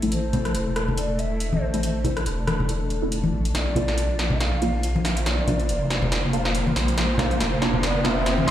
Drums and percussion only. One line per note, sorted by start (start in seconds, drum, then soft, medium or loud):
0.02 closed hi-hat medium
0.12 closed hi-hat medium
0.33 closed hi-hat medium
0.33 low conga medium
0.45 cross-stick soft
0.45 closed hi-hat soft
0.55 closed hi-hat medium
0.76 cross-stick medium
0.76 closed hi-hat medium
0.88 low conga medium
0.98 closed hi-hat medium
1.19 closed hi-hat medium
1.40 closed hi-hat medium
1.53 high conga medium
1.74 closed hi-hat medium
1.83 closed hi-hat medium
2.04 closed hi-hat medium
2.04 low conga medium
2.17 cross-stick medium
2.17 closed hi-hat soft
2.26 closed hi-hat medium
2.47 cross-stick medium
2.47 closed hi-hat soft
2.47 high conga medium
2.60 low conga medium
2.69 closed hi-hat medium
2.90 closed hi-hat medium
3.12 closed hi-hat medium
3.24 high conga medium
3.45 closed hi-hat medium
3.55 snare soft
3.55 closed hi-hat medium
3.76 closed hi-hat soft
3.76 low conga medium
3.88 snare soft
3.88 closed hi-hat soft
3.98 closed hi-hat medium
4.19 snare medium
4.19 closed hi-hat medium
4.30 low conga medium
4.41 snare medium
4.41 closed hi-hat medium
4.62 closed hi-hat soft
4.83 closed hi-hat medium
4.96 high conga medium
5.05 snare medium
5.05 open hi-hat medium
5.17 closed hi-hat medium
5.26 snare medium
5.26 closed hi-hat medium
5.47 closed hi-hat soft
5.47 low conga medium
5.60 closed hi-hat soft
5.69 closed hi-hat medium
5.90 snare medium
5.90 closed hi-hat soft
6.02 low conga medium
6.12 snare medium
6.12 closed hi-hat medium
6.33 closed hi-hat soft
6.45 snare medium
6.55 closed hi-hat medium
6.67 high conga medium
6.76 snare medium
6.76 open hi-hat medium
6.88 closed hi-hat medium
6.98 snare medium
6.98 closed hi-hat medium
7.18 snare medium
7.18 closed hi-hat medium
7.18 low conga medium
7.31 closed hi-hat soft
7.41 snare medium
7.41 closed hi-hat medium
7.62 snare medium
7.62 closed hi-hat medium
7.74 low conga medium
7.83 snare medium
7.83 closed hi-hat medium
8.05 snare medium
8.05 closed hi-hat medium
8.26 snare medium
8.26 closed hi-hat medium
8.38 high conga medium
8.48 snare medium
8.48 open hi-hat loud